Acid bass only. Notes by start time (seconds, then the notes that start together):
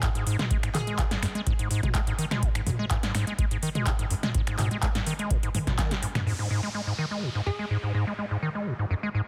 0.03 G#2
0.15 G#2
0.27 G#2
0.39 G#3
0.51 G#3
0.63 G#2
0.75 D#3
0.87 G#3
0.98 G#2
1.11 G#2
1.23 F#2
1.35 G#3
1.47 G#2
1.59 G#2
1.71 G#2
1.83 G#3
1.95 G#3
2.07 G#2
2.19 D#3
2.31 G#3
2.43 G#2
2.55 G#2
2.67 F#2
2.79 G#3
2.91 G#2
3.03 G#2
3.15 G#2
3.27 G#3
3.39 G#3
3.51 G#2
3.63 D#3
3.75 G#3
3.87 G#2
3.99 G#2
4.11 F#2
4.23 G#3
4.35 G#2
4.47 G#2
4.59 G#2
4.71 G#3
4.83 G#3
4.95 G#2
5.07 D#3
5.19 G#3
5.31 G#2
5.43 G#2
5.55 G#2
5.67 G#2
5.79 D#3
5.91 G#2
6.03 G#2
6.15 B2
6.27 G#2
6.39 G#2
6.51 G#2
6.63 G#3
6.75 G#3
6.87 G#2
6.98 D#3
7.11 G#3
7.22 G#2
7.35 G#2
7.47 F#2
7.59 G#3
7.71 G#2
7.83 G#2
7.95 G#2
8.07 G#3
8.19 G#3
8.31 G#2
8.43 D#3
8.55 G#3
8.67 G#2
8.79 G#2
8.91 F#2
9.03 G#3
9.15 G#2